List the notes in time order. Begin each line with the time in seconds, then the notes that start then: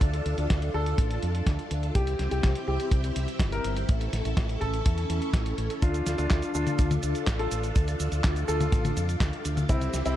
Already playing: D4 F4 A4
0.01 D2, kick, closed hi-hat
0.14 closed hi-hat
0.26 D2, closed hi-hat
0.38 D2, closed hi-hat
0.50 D2, kick, snare, closed hi-hat
0.62 closed hi-hat
0.74 D2 A4
0.86 closed hi-hat
0.98 A1, kick, closed hi-hat
1.11 closed hi-hat
1.23 F2, closed hi-hat
1.35 closed hi-hat
1.47 D2, kick, snare, closed hi-hat
1.59 closed hi-hat
1.71 D2, closed hi-hat
1.83 closed hi-hat
1.95 C2 C4 E4 G4, kick, closed hi-hat
2.07 closed hi-hat
2.19 C2, snare, closed hi-hat
2.31 C2 G4, closed hi-hat
2.43 C2, kick, snare, closed hi-hat
2.55 closed hi-hat
2.68 C2 G4
2.80 closed hi-hat
2.91 C2, kick, closed hi-hat
3.04 closed hi-hat
3.16 C2, closed hi-hat
3.28 closed hi-hat
3.40 G1, kick, snare, closed hi-hat
3.52 A#4, closed hi-hat
3.64 G1, closed hi-hat
3.77 closed hi-hat
3.88 A1 C#4 A4, kick, closed hi-hat
4.01 closed hi-hat
4.13 A1, snare, closed hi-hat
4.25 A1, closed hi-hat
4.37 A1, kick, snare, closed hi-hat
4.49 closed hi-hat
4.61 A1 A4, kick, closed hi-hat
4.74 closed hi-hat
4.86 E2, kick, closed hi-hat
4.98 closed hi-hat
5.10 E2, closed hi-hat
5.22 closed hi-hat
5.33 A1, kick, snare, closed hi-hat
5.46 closed hi-hat
5.58 A1, closed hi-hat
5.70 closed hi-hat
5.82 D2 D4 F4 A4, kick, closed hi-hat, cabasa
5.94 closed hi-hat, cabasa
6.06 D2, snare, closed hi-hat, cabasa
6.18 D2 D4 F4, closed hi-hat, cabasa
6.30 D2, kick, snare, clap, closed hi-hat, cabasa
6.42 closed hi-hat, cabasa
6.54 D2 D4 F4, cabasa
6.67 closed hi-hat, high tom, cabasa
6.79 D2, kick, closed hi-hat, cabasa
6.91 closed hi-hat, high tom, cabasa
7.03 D2, closed hi-hat, cabasa
7.15 closed hi-hat, cabasa
7.27 A1, kick, snare, clap, closed hi-hat, cabasa
7.39 F4 A4, closed hi-hat
7.51 A1, closed hi-hat, cabasa
7.63 closed hi-hat, cabasa
7.76 D2, kick, closed hi-hat, cabasa
7.88 closed hi-hat, cabasa
8.00 D2, closed hi-hat, cabasa
8.12 D2, closed hi-hat, cabasa
8.24 D2, kick, snare, clap, closed hi-hat, cabasa
8.36 closed hi-hat, cabasa
8.48 D2 F4 A4, cabasa
8.61 closed hi-hat, high tom, cabasa
8.72 A1, kick, closed hi-hat, cabasa
8.85 closed hi-hat, high tom, cabasa
8.97 F2, closed hi-hat, cabasa
9.09 closed hi-hat, cabasa
9.20 D2, kick, snare, clap, closed hi-hat, cabasa
9.33 closed hi-hat
9.45 D2, closed hi-hat, cabasa
9.57 closed hi-hat, high tom, cabasa
9.69 C2 C4 E4 G4, kick, closed hi-hat, cabasa
9.81 closed hi-hat, cabasa
9.94 C2, snare, closed hi-hat, cabasa
10.06 C2 C4 E4, closed hi-hat, cabasa